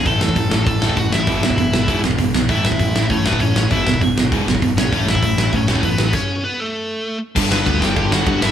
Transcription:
<<
  \new Staff \with { instrumentName = "Lead electric guitar" } { \time 4/4 \key a \major \tempo 4 = 197 <a' a''>2 <a' a''>4 <fis' fis''>8 <e' e''>8~ | <e' e''>2~ <e' e''>8 r4. | <e' e''>2 <cis' cis''>8 <b b'>8 <cis' cis''>4 | <e' e''>4 r2 r8 <cis' cis''>8~ |
<cis' cis''>8 <e' e''>4. <cis' cis''>4 <b b'>4 | <cis' cis''>4 <b b'>8 <a a'>2 r8 | \key g \lydian r8 <b b'>4 <g' g''>4 <fis' fis''>4 <e' e''>8 | }
  \new Staff \with { instrumentName = "Distorted electric guitar" } { \clef bass \time 4/4 \key a \major r1 | r1 | r1 | r1 |
r1 | r1 | \key g \lydian <g, d g>2.~ <g, d g>8 <g, d g>8 | }
  \new Staff \with { instrumentName = "Distorted electric guitar" } { \clef bass \time 4/4 \key a \major <a, e a>8 <a, e>8 <a, e>8 <a, e>8 <a, e>8 <a, e a>8 <a, e>8 <a, e>8 | <e, b, e>8 <e, b,>8 <e, b,>8 <e, b,>8 <e, b, e>8 <e, b,>8 <e, b,>8 <e, b,>8 | <a, e a>8 <a, e>8 <a, e>8 <a, e>8 <a, e>8 <a, e a>8 <a, e>8 <a, e>8 | <e, b, e>8 <e, b,>8 <e, b,>8 <e, b,>8 <e, b, e>8 <e, b,>8 <e, b,>8 <e, b,>8 |
<a, e a>8 <a, e>8 <a, e>8 <a, e>8 <a, e>8 <a, e a>8 <a, e>8 <a, e>8 | r1 | \key g \lydian <g, d g>8 <g, d g>8 <g, d g>8 <g, d g>8 <g, d g>8 <g, d g>8 <g, d g>8 <g, d g>8 | }
  \new Staff \with { instrumentName = "Overdriven electric guitar" } { \clef bass \time 4/4 \key a \major <a, e a>8 <a, e>8 <a, e>8 <a, e>8 <a, e>8 <a, e a>8 <a, e>8 <a, e>8 | <e, b, e>8 <e, b,>8 <e, b,>8 <e, b,>8 <e, b, e>8 <e, b,>8 <e, b,>8 <e, b,>8 | <a, e a>8 <a, e>8 <a, e>8 <a, e>8 <a, e>8 <a, e a>8 <a, e>8 <a, e>8 | <e, b, e>8 <e, b,>8 <e, b,>8 <e, b,>8 <e, b, e>8 <e, b,>8 <e, b,>8 <e, b,>8 |
<a, e a>8 <a, e>8 <a, e>8 <a, e>8 <a, e>8 <a, e a>8 <a, e>8 <a, e>8 | r1 | \key g \lydian <g, d g>8 <g, d g>8 <g, d g>8 <g, d g>8 <g, d g>8 <g, d g>8 <g, d g>8 <g, d g>8 | }
  \new Staff \with { instrumentName = "Picked electric bass" } { \clef bass \time 4/4 \key a \major a,,8 a,,8 a,,8 a,,8 a,8 a,,8 a,,8 a,,8 | gis,,8 gis,,8 gis,,8 gis,,8 gis,8 gis,,8 gis,,8 b,,8 | a,,8 a,,8 a,,8 a,,8 a,8 a,,8 a,,8 a,,8 | gis,,8 gis,,8 gis,,8 gis,,8 gis,8 gis,,8 gis,,8 gis,,8 |
a,,8 a,,8 a,,8 a,,8 a,8 a,,8 a,,8 a,,8 | r1 | \key g \lydian g,,8 g,,8 d,8 g,,8 g,,8 g,,8 g,,8 gis,,8 | }
  \new DrumStaff \with { instrumentName = "Drums" } \drummode { \time 4/4 <hho bd>8 sn16 bd16 <hho bd>8 sn8 <hho bd>8 sn16 bd16 <hho bd>8 sn8 | <hho bd>8 sn16 bd16 <hho bd>8 sn8 <hho bd>8 sn16 bd16 <hho bd>8 sn8 | <hho bd>8 sn16 bd16 <hho bd>8 sn8 <hho bd>8 sn16 bd16 <hho bd>8 sn8 | <hho bd>8 sn16 bd16 <hho bd>8 sn8 <hho bd>8 sn16 bd16 <hho bd>8 sn8 |
<hho bd>8 sn16 bd16 <hho bd>8 sn8 <hho bd>8 sn16 bd16 <hho bd>8 sn8 | <cymc bd>4 r4 r4 r4 | <cymc bd>8 sn8 <bd cymr>8 sn8 <bd cymr>8 sn8 <bd cymr>8 sn8 | }
>>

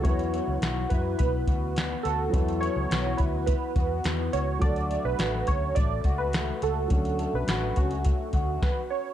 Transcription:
<<
  \new Staff \with { instrumentName = "Synth keys" } { \time 4/4 \key d \lydian \tempo 4 = 105 cis''4 r8 b'8 b'4. a'8~ | a'8 cis''4 b'8 b'4. cis''8 | d''8. b'8. cis''8 d''8. b'8. a'8~ | a'8. b'8. fis'4. b'8 cis''8 | }
  \new Staff \with { instrumentName = "Clean electric guitar" } { \time 4/4 \key d \lydian <e fis'>8 b8 fis'8 e'8 b8 fis'8 b8 fis'8 | <e fis'>8 b8 fis'8 e'8 b8 fis'8 b8 fis'8 | fis'8 a8 fis'4 a8 fis'8 a8 fis'8 | fis'8 a8 fis'8 cis'8 a8 fis'8 r4 | }
  \new Staff \with { instrumentName = "Upright piano" } { \time 4/4 \key d \lydian <fis b e' b'>1 | <fis b e' a'>1 | <fis a d' a'>1 | <fis cis' d' a'>2. r4 | }
  \new Staff \with { instrumentName = "Fingered electric bass" } { \clef bass \time 4/4 \key d \lydian e,8. cis,16 b,,8 fis,8 b,,8 d,4 d,8 | e,8. cis,16 b,,8 d,8. r16 e,8 e,8 cis,8 | d,8. b,,16 a,,8 d,8 a,,8 cis,4 cis,8 | d,8. b,,16 a,,8 cis,8. r16 d,8 r4 | }
  \new DrumStaff \with { instrumentName = "Drums" } \drummode { \time 4/4 <hh bd>16 hh16 hh8 <hh sn>8 <hh bd>8 <hh bd>8 <hh bd>8 <hh sn>8 hh8 | <hh bd>16 hh16 hh8 <hh sn>8 <hh bd>8 <hh bd>8 <hh bd>8 <hh sn>8 hh8 | <hh bd>16 hh16 hh8 <hh sn>8 <hh bd>8 <hh bd>8 <hh bd>8 <hh sn>8 hh8 | <hh bd>16 hh16 hh8 <hh sn>8 <hh bd>16 hh16 <hh bd>8 <hh bd>8 <bd sn>4 | }
>>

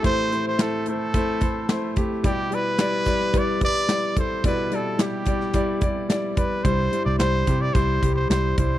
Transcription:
<<
  \new Staff \with { instrumentName = "Trumpet" } { \time 4/4 \key e \phrygian \tempo 4 = 109 c''8. c''16 a'8 a'2 r8 | g'8 b'4. d''8 d''4 c''8 | b'8 a'8 g'2 r8 b'8 | c''8. d''16 c''8. d''16 c''8. c''16 c''8 c''8 | }
  \new Staff \with { instrumentName = "Grand piano" } { \time 4/4 \key e \phrygian <a e' c''>8 <a e' c''>8 <a e' c''>8 <a e' c''>8 <a e' c''>8 <a e' c''>8 <a e' c''>8 <a e' g'>8 | <g e' d''>8 <g e' d''>8 <g e' d''>8 <g e' d''>8 <g e' b'>8 <g e' b'>8 <g e' d''>8 <g e' a'>8 | <g e' d''>8 <g e' d''>8 <g e' g'>8 <g e' d''>8 <g e' d''>8 <g e' d''>8 <g e' d''>8 <g e' d''>8 | <g e' c''>8 <g e' c''>8 <g e' c''>8 <g e' g'>8 <g e' c''>8 <g e' g'>8 <g e' c''>8 <g e' c''>8 | }
  \new Staff \with { instrumentName = "Grand piano" } { \clef bass \time 4/4 \key e \phrygian <a, e>4. r4. c'''4 | b,4. r2 r8 | b,4. r2 r8 | g,4. r2 r8 | }
  \new Staff \with { instrumentName = "Picked electric bass" } { \clef bass \time 4/4 \key e \phrygian r1 | r1 | r1 | c,8 r16 c,16 c,8 c8 c,8 c,8 c,8 c,8 | }
  \new DrumStaff \with { instrumentName = "Drums" } \drummode { \time 4/4 <hh bd>8 hh8 <hc hh sn>8 hh8 <hh bd>8 <hh bd>8 <hc hh sn>8 <hh bd>8 | <hh bd>8 hh8 <hc hh sn>8 <hh bd>16 sn16 <hh bd>8 <hh bd>8 <hc hh sn>8 <hh bd>8 | <hh bd>8 hh8 <hc hh sn>8 <hh bd>16 sn16 <hh bd>8 <hh bd>8 <hc hh sn>8 <hh bd>8 | <hh bd>8 hh8 <hc hh sn>8 <hh bd>8 <hh bd>8 <hh bd>8 <hc hh sn>8 <hh bd>8 | }
>>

